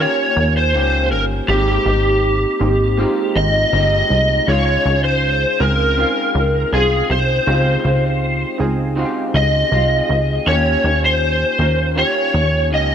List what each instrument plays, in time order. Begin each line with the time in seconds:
Already playing: synth keys G4
0.00 clean electric guitar D#3 A#3 C#4 G4, synth keys A#3 C#4 F4 A#4, electric slide guitar C#5
0.36 analog synth bass D#2
0.57 electric slide guitar C5
0.73 analog synth bass C#2, clean electric guitar D#3 A#3 C#4 G4
1.11 analog synth bass G1, electric slide guitar A#4
1.48 analog synth bass G#1, clean electric guitar G#3 C4 D#4 G4, synth keys A#3 C4 D#4 G4, electric slide guitar G4
1.85 analog synth bass G#1, clean electric guitar C4 D#4 G4
2.59 analog synth bass G#1, synth keys A#3 C4 D#4 G4
2.97 clean electric guitar G#3 C4 D#4 G4, synth keys A#3 C4 D#4 F4
3.36 analog synth bass G#1, electric slide guitar D#5
3.72 analog synth bass G1, clean electric guitar G#3 C4 D#4 G4
4.10 analog synth bass C2
4.46 analog synth bass C#2, clean electric guitar C#3 G#3, synth keys C#4 D#4 F4 G#4, electric slide guitar C#5
4.51 clean electric guitar F4
4.86 analog synth bass C#2
5.04 electric slide guitar C5
5.60 analog synth bass C#2, synth keys C4 D#4 F4 G#4, electric slide guitar A#4
5.97 clean electric guitar C#3 G#3 C4 F4, synth keys C4 D#4 F4 G#4
6.35 analog synth bass C#2
6.73 analog synth bass C2, clean electric guitar G#3 C4 F4, electric slide guitar G#4
7.10 analog synth bass C2, electric slide guitar C5
7.47 analog synth bass C#2, clean electric guitar C#3 G#3 C4 F4, synth keys C4 D#4 F4 G4
7.84 analog synth bass C#2, clean electric guitar G#3 C4 F4
8.58 analog synth bass C#2, synth keys C4 D#4 F4 G#4
8.96 clean electric guitar C#3 G#3 C4 F4, synth keys C4 D#4 F4 F#4
9.05 synth keys G4
9.34 analog synth bass C#2, electric slide guitar D#5
9.72 analog synth bass C2, clean electric guitar G#3 C4 F4
10.09 analog synth bass C#2
10.45 analog synth bass D#2, clean electric guitar D#3 A#3 C#4, synth keys A#3 C#4 F4 G4, electric slide guitar C#5
10.51 clean electric guitar G4
10.84 analog synth bass D#2
11.05 electric slide guitar C5
11.58 analog synth bass D#2, synth keys A#3 C#4 F4 A#4
11.95 clean electric guitar D#3 A#3 C#4 G4, synth keys A#3 C#4 F4 G4, electric slide guitar C#5
12.34 analog synth bass D#2
12.71 analog synth bass C#2, clean electric guitar D#3 A#3 C#4 G4, electric slide guitar D#5